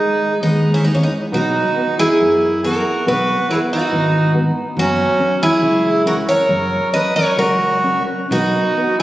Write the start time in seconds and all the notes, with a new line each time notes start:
Already playing: G#3 D#4 G#4
0.41 D#2 G#3 B3 D#4
0.73 C#4 E4
0.82 B3 D#4
0.88 G#3 A#3
0.94 C#4
1.00 B3 D#4
1.32 B1 B3 D#4 F#4
1.77 B3
1.99 E4 G#4
2.20 F#2 B3
2.64 B3 F#4 A#4
3.06 B1 B3 F#4 B4
3.48 B3 E4 G#4
3.72 D#4 F#4
3.91 G#1 B3
4.34 B3
4.77 F#1 F#3 C#4 F#4
5.19 C#4
5.42 E4 G#4
5.61 C#2 F#3
6.05 C#4 F#4 A#4
6.29 A#4 C#5
6.49 F#1 F#3
6.93 C#4 B4 D#5
7.16 A#4 C#5
7.38 C#2 F#3 F#4 A#4
7.84 C#4
8.31 B1 B3 D#4 F#4
8.77 B3
8.98 E4